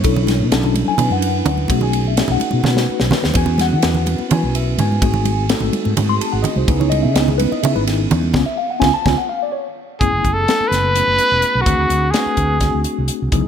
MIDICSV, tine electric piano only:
0, 0, Header, 1, 2, 480
1, 0, Start_track
1, 0, Tempo, 475059
1, 38, Time_signature, 7, 3, 24, 8
1, 13619, End_track
2, 0, Start_track
2, 0, Title_t, "Tine electric piano"
2, 0, Program_c, 0, 4
2, 0, Note_on_c, 0, 73, 92
2, 38, Note_on_c, 0, 54, 70
2, 41, Note_on_c, 0, 61, 64
2, 44, Note_on_c, 0, 62, 70
2, 44, Note_on_c, 0, 64, 67
2, 44, Note_on_c, 0, 69, 76
2, 463, Note_off_c, 0, 54, 0
2, 465, Note_off_c, 0, 61, 0
2, 467, Note_off_c, 0, 62, 0
2, 467, Note_off_c, 0, 64, 0
2, 467, Note_off_c, 0, 69, 0
2, 480, Note_off_c, 0, 73, 0
2, 515, Note_on_c, 0, 61, 73
2, 516, Note_on_c, 0, 54, 89
2, 526, Note_on_c, 0, 62, 77
2, 526, Note_on_c, 0, 64, 82
2, 526, Note_on_c, 0, 69, 98
2, 889, Note_on_c, 0, 80, 93
2, 942, Note_off_c, 0, 61, 0
2, 943, Note_off_c, 0, 54, 0
2, 948, Note_off_c, 0, 62, 0
2, 948, Note_off_c, 0, 64, 0
2, 948, Note_off_c, 0, 69, 0
2, 1001, Note_on_c, 0, 54, 58
2, 1005, Note_on_c, 0, 64, 59
2, 1006, Note_on_c, 0, 61, 59
2, 1008, Note_on_c, 0, 62, 61
2, 1008, Note_on_c, 0, 71, 74
2, 1117, Note_off_c, 0, 80, 0
2, 1133, Note_on_c, 0, 78, 86
2, 1708, Note_off_c, 0, 61, 0
2, 1719, Note_off_c, 0, 54, 0
2, 1720, Note_on_c, 0, 61, 71
2, 1721, Note_off_c, 0, 64, 0
2, 1721, Note_on_c, 0, 63, 66
2, 1721, Note_on_c, 0, 68, 74
2, 1722, Note_on_c, 0, 66, 66
2, 1723, Note_off_c, 0, 62, 0
2, 1723, Note_off_c, 0, 71, 0
2, 1723, Note_on_c, 0, 57, 71
2, 1805, Note_off_c, 0, 78, 0
2, 1849, Note_on_c, 0, 80, 82
2, 2076, Note_off_c, 0, 80, 0
2, 2098, Note_on_c, 0, 76, 61
2, 2144, Note_off_c, 0, 61, 0
2, 2145, Note_off_c, 0, 63, 0
2, 2145, Note_off_c, 0, 66, 0
2, 2145, Note_off_c, 0, 68, 0
2, 2146, Note_off_c, 0, 57, 0
2, 2204, Note_on_c, 0, 57, 70
2, 2209, Note_on_c, 0, 61, 63
2, 2210, Note_on_c, 0, 68, 74
2, 2212, Note_on_c, 0, 63, 64
2, 2214, Note_on_c, 0, 66, 64
2, 2321, Note_off_c, 0, 76, 0
2, 2339, Note_on_c, 0, 78, 89
2, 2626, Note_off_c, 0, 57, 0
2, 2629, Note_off_c, 0, 61, 0
2, 2629, Note_off_c, 0, 68, 0
2, 2631, Note_off_c, 0, 63, 0
2, 2631, Note_off_c, 0, 66, 0
2, 2676, Note_on_c, 0, 57, 70
2, 2677, Note_on_c, 0, 66, 60
2, 2678, Note_on_c, 0, 61, 56
2, 2682, Note_on_c, 0, 63, 57
2, 2686, Note_on_c, 0, 71, 66
2, 3008, Note_off_c, 0, 78, 0
2, 3373, Note_off_c, 0, 66, 0
2, 3377, Note_off_c, 0, 61, 0
2, 3381, Note_on_c, 0, 59, 72
2, 3384, Note_on_c, 0, 64, 62
2, 3385, Note_on_c, 0, 66, 65
2, 3388, Note_on_c, 0, 68, 75
2, 3389, Note_on_c, 0, 61, 65
2, 3397, Note_off_c, 0, 57, 0
2, 3400, Note_off_c, 0, 63, 0
2, 3402, Note_off_c, 0, 71, 0
2, 3405, Note_on_c, 0, 80, 85
2, 3634, Note_off_c, 0, 80, 0
2, 3648, Note_on_c, 0, 78, 94
2, 3815, Note_off_c, 0, 59, 0
2, 3816, Note_off_c, 0, 64, 0
2, 3817, Note_off_c, 0, 66, 0
2, 3818, Note_off_c, 0, 68, 0
2, 3819, Note_off_c, 0, 61, 0
2, 3883, Note_on_c, 0, 71, 76
2, 3885, Note_on_c, 0, 59, 73
2, 3887, Note_on_c, 0, 66, 67
2, 3890, Note_on_c, 0, 61, 60
2, 3891, Note_on_c, 0, 64, 66
2, 4306, Note_off_c, 0, 59, 0
2, 4306, Note_off_c, 0, 71, 0
2, 4308, Note_off_c, 0, 66, 0
2, 4309, Note_off_c, 0, 61, 0
2, 4310, Note_off_c, 0, 64, 0
2, 4322, Note_off_c, 0, 78, 0
2, 4332, Note_on_c, 0, 61, 58
2, 4340, Note_on_c, 0, 59, 60
2, 4341, Note_on_c, 0, 71, 68
2, 4342, Note_on_c, 0, 66, 62
2, 4347, Note_on_c, 0, 64, 64
2, 4374, Note_on_c, 0, 80, 99
2, 4599, Note_off_c, 0, 80, 0
2, 4603, Note_on_c, 0, 76, 80
2, 4833, Note_off_c, 0, 76, 0
2, 4849, Note_on_c, 0, 80, 96
2, 5064, Note_off_c, 0, 61, 0
2, 5065, Note_off_c, 0, 66, 0
2, 5066, Note_on_c, 0, 60, 68
2, 5068, Note_off_c, 0, 59, 0
2, 5069, Note_off_c, 0, 71, 0
2, 5070, Note_on_c, 0, 57, 70
2, 5071, Note_on_c, 0, 63, 66
2, 5072, Note_off_c, 0, 64, 0
2, 5075, Note_on_c, 0, 68, 89
2, 5077, Note_on_c, 0, 66, 68
2, 5497, Note_off_c, 0, 60, 0
2, 5499, Note_off_c, 0, 57, 0
2, 5499, Note_off_c, 0, 63, 0
2, 5501, Note_off_c, 0, 68, 0
2, 5502, Note_off_c, 0, 66, 0
2, 5522, Note_off_c, 0, 80, 0
2, 5548, Note_on_c, 0, 60, 75
2, 5554, Note_on_c, 0, 69, 100
2, 5555, Note_on_c, 0, 57, 88
2, 5556, Note_on_c, 0, 66, 80
2, 5561, Note_on_c, 0, 63, 71
2, 5978, Note_off_c, 0, 60, 0
2, 5980, Note_off_c, 0, 69, 0
2, 5981, Note_off_c, 0, 57, 0
2, 5981, Note_off_c, 0, 66, 0
2, 5984, Note_off_c, 0, 63, 0
2, 6033, Note_on_c, 0, 57, 67
2, 6035, Note_on_c, 0, 63, 60
2, 6038, Note_on_c, 0, 60, 65
2, 6038, Note_on_c, 0, 68, 79
2, 6040, Note_on_c, 0, 66, 69
2, 6157, Note_on_c, 0, 84, 104
2, 6273, Note_off_c, 0, 84, 0
2, 6277, Note_on_c, 0, 81, 86
2, 6390, Note_on_c, 0, 78, 89
2, 6393, Note_off_c, 0, 81, 0
2, 6491, Note_on_c, 0, 75, 102
2, 6509, Note_off_c, 0, 78, 0
2, 6619, Note_off_c, 0, 75, 0
2, 6640, Note_on_c, 0, 72, 82
2, 6740, Note_off_c, 0, 63, 0
2, 6742, Note_off_c, 0, 68, 0
2, 6747, Note_on_c, 0, 71, 81
2, 6750, Note_on_c, 0, 59, 77
2, 6750, Note_on_c, 0, 61, 66
2, 6751, Note_on_c, 0, 64, 62
2, 6752, Note_on_c, 0, 63, 70
2, 6754, Note_off_c, 0, 57, 0
2, 6754, Note_off_c, 0, 72, 0
2, 6754, Note_on_c, 0, 68, 76
2, 6756, Note_off_c, 0, 60, 0
2, 6757, Note_off_c, 0, 66, 0
2, 6867, Note_off_c, 0, 71, 0
2, 6871, Note_on_c, 0, 73, 83
2, 6968, Note_on_c, 0, 75, 101
2, 6989, Note_off_c, 0, 73, 0
2, 7097, Note_off_c, 0, 75, 0
2, 7100, Note_on_c, 0, 76, 84
2, 7178, Note_off_c, 0, 59, 0
2, 7178, Note_off_c, 0, 61, 0
2, 7178, Note_off_c, 0, 64, 0
2, 7179, Note_off_c, 0, 63, 0
2, 7180, Note_off_c, 0, 68, 0
2, 7217, Note_on_c, 0, 75, 88
2, 7223, Note_off_c, 0, 76, 0
2, 7229, Note_on_c, 0, 63, 73
2, 7231, Note_on_c, 0, 59, 75
2, 7232, Note_on_c, 0, 61, 74
2, 7232, Note_on_c, 0, 64, 64
2, 7233, Note_on_c, 0, 68, 85
2, 7326, Note_off_c, 0, 68, 0
2, 7338, Note_on_c, 0, 68, 63
2, 7342, Note_off_c, 0, 75, 0
2, 7457, Note_on_c, 0, 71, 102
2, 7462, Note_off_c, 0, 68, 0
2, 7582, Note_off_c, 0, 71, 0
2, 7598, Note_on_c, 0, 75, 84
2, 7657, Note_off_c, 0, 63, 0
2, 7658, Note_off_c, 0, 59, 0
2, 7658, Note_off_c, 0, 61, 0
2, 7659, Note_off_c, 0, 64, 0
2, 7702, Note_on_c, 0, 59, 65
2, 7705, Note_on_c, 0, 61, 62
2, 7705, Note_on_c, 0, 63, 63
2, 7706, Note_on_c, 0, 64, 60
2, 7710, Note_on_c, 0, 68, 76
2, 7713, Note_off_c, 0, 75, 0
2, 7717, Note_on_c, 0, 76, 94
2, 7832, Note_off_c, 0, 76, 0
2, 7835, Note_on_c, 0, 71, 108
2, 7907, Note_off_c, 0, 71, 0
2, 8405, Note_off_c, 0, 59, 0
2, 8415, Note_off_c, 0, 61, 0
2, 8417, Note_on_c, 0, 59, 84
2, 8427, Note_on_c, 0, 61, 97
2, 8429, Note_off_c, 0, 63, 0
2, 8429, Note_off_c, 0, 64, 0
2, 8430, Note_on_c, 0, 65, 88
2, 8431, Note_off_c, 0, 68, 0
2, 8500, Note_off_c, 0, 59, 0
2, 8506, Note_off_c, 0, 61, 0
2, 8508, Note_off_c, 0, 65, 0
2, 8547, Note_on_c, 0, 76, 79
2, 8664, Note_on_c, 0, 77, 83
2, 8666, Note_off_c, 0, 76, 0
2, 8785, Note_off_c, 0, 77, 0
2, 8794, Note_on_c, 0, 78, 72
2, 8887, Note_on_c, 0, 61, 110
2, 8889, Note_on_c, 0, 65, 117
2, 8891, Note_on_c, 0, 59, 102
2, 8893, Note_on_c, 0, 80, 115
2, 8910, Note_off_c, 0, 78, 0
2, 8974, Note_off_c, 0, 61, 0
2, 8975, Note_off_c, 0, 65, 0
2, 8977, Note_off_c, 0, 59, 0
2, 9019, Note_off_c, 0, 80, 0
2, 9032, Note_on_c, 0, 81, 113
2, 9148, Note_off_c, 0, 81, 0
2, 9151, Note_on_c, 0, 80, 90
2, 9154, Note_on_c, 0, 65, 91
2, 9155, Note_on_c, 0, 59, 105
2, 9158, Note_on_c, 0, 61, 94
2, 9230, Note_off_c, 0, 65, 0
2, 9231, Note_off_c, 0, 59, 0
2, 9233, Note_off_c, 0, 61, 0
2, 9268, Note_off_c, 0, 80, 0
2, 9270, Note_on_c, 0, 78, 78
2, 9388, Note_off_c, 0, 78, 0
2, 9389, Note_on_c, 0, 77, 104
2, 9507, Note_off_c, 0, 77, 0
2, 9524, Note_on_c, 0, 74, 92
2, 9621, Note_on_c, 0, 73, 80
2, 9635, Note_off_c, 0, 74, 0
2, 9768, Note_off_c, 0, 73, 0
2, 10106, Note_on_c, 0, 57, 66
2, 10111, Note_on_c, 0, 59, 60
2, 10116, Note_on_c, 0, 61, 59
2, 10117, Note_on_c, 0, 64, 56
2, 10117, Note_on_c, 0, 68, 70
2, 10535, Note_off_c, 0, 57, 0
2, 10538, Note_off_c, 0, 59, 0
2, 10540, Note_off_c, 0, 61, 0
2, 10540, Note_off_c, 0, 64, 0
2, 10541, Note_off_c, 0, 68, 0
2, 10591, Note_on_c, 0, 64, 54
2, 10594, Note_on_c, 0, 57, 63
2, 10594, Note_on_c, 0, 61, 53
2, 10595, Note_on_c, 0, 59, 64
2, 10601, Note_on_c, 0, 69, 69
2, 11018, Note_off_c, 0, 64, 0
2, 11019, Note_off_c, 0, 57, 0
2, 11020, Note_off_c, 0, 59, 0
2, 11020, Note_off_c, 0, 61, 0
2, 11023, Note_off_c, 0, 69, 0
2, 11068, Note_on_c, 0, 57, 61
2, 11068, Note_on_c, 0, 61, 57
2, 11072, Note_on_c, 0, 64, 55
2, 11075, Note_on_c, 0, 68, 69
2, 11076, Note_on_c, 0, 59, 54
2, 11779, Note_off_c, 0, 57, 0
2, 11784, Note_off_c, 0, 68, 0
2, 11788, Note_on_c, 0, 60, 63
2, 11791, Note_on_c, 0, 57, 67
2, 11792, Note_off_c, 0, 61, 0
2, 11792, Note_on_c, 0, 62, 62
2, 11794, Note_off_c, 0, 64, 0
2, 11796, Note_off_c, 0, 59, 0
2, 11796, Note_on_c, 0, 66, 58
2, 11796, Note_on_c, 0, 68, 75
2, 12217, Note_off_c, 0, 60, 0
2, 12219, Note_off_c, 0, 57, 0
2, 12219, Note_off_c, 0, 62, 0
2, 12221, Note_off_c, 0, 66, 0
2, 12221, Note_off_c, 0, 68, 0
2, 12269, Note_on_c, 0, 57, 67
2, 12274, Note_on_c, 0, 71, 78
2, 12275, Note_on_c, 0, 62, 64
2, 12276, Note_on_c, 0, 66, 56
2, 12278, Note_on_c, 0, 60, 60
2, 12698, Note_off_c, 0, 57, 0
2, 12701, Note_off_c, 0, 62, 0
2, 12701, Note_off_c, 0, 71, 0
2, 12702, Note_off_c, 0, 66, 0
2, 12703, Note_off_c, 0, 60, 0
2, 12746, Note_on_c, 0, 62, 54
2, 12747, Note_on_c, 0, 66, 62
2, 12751, Note_on_c, 0, 57, 61
2, 12751, Note_on_c, 0, 60, 62
2, 12759, Note_on_c, 0, 68, 61
2, 13448, Note_off_c, 0, 68, 0
2, 13458, Note_on_c, 0, 59, 68
2, 13459, Note_on_c, 0, 54, 75
2, 13460, Note_on_c, 0, 68, 88
2, 13463, Note_on_c, 0, 64, 70
2, 13468, Note_on_c, 0, 63, 78
2, 13472, Note_off_c, 0, 62, 0
2, 13472, Note_off_c, 0, 66, 0
2, 13474, Note_off_c, 0, 60, 0
2, 13475, Note_off_c, 0, 57, 0
2, 13619, Note_off_c, 0, 54, 0
2, 13619, Note_off_c, 0, 59, 0
2, 13619, Note_off_c, 0, 63, 0
2, 13619, Note_off_c, 0, 64, 0
2, 13619, Note_off_c, 0, 68, 0
2, 13619, End_track
0, 0, End_of_file